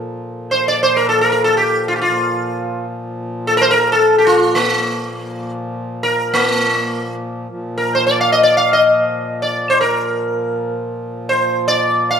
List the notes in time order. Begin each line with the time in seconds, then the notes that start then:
Already playing: A#2 F3
0.51 C5
0.68 D5
0.83 C5
0.97 A#4
1.09 A4
1.21 A#4
1.32 A#4
1.44 A4
1.57 G4
1.88 F4
1.96 G4
2.01 A#2 F3 F4
3.47 A4
3.57 A#4
3.61 C5
3.71 A#4
3.92 A4
4.18 G4
4.27 F4
4.55 A#3
6.03 A#4
6.34 A#3
7.48 A#2 F3
7.78 A#4
7.95 C5
8.07 D5
8.21 F5
8.32 D#5
8.43 D5
8.57 F5
8.73 D#5
9.42 D5
9.70 C5
9.81 A#4
11.29 C5
11.68 D5
12.11 F5